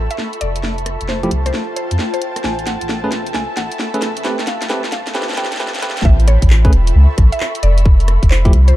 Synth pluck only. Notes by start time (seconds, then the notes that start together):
0.11 E5
0.41 D5
1.09 C5
1.46 C5
1.76 C5
2.14 C5
2.44 G#5
2.67 F#5
3.34 G#5
3.57 F#5
4.25 G5
4.47 F5
4.70 G5
4.92 F5
5.15 G5
5.37 G5
5.60 G5
5.82 G5
6.05 E5
6.28 C#5
7.32 E5
7.63 D5
8.31 C5
8.68 C5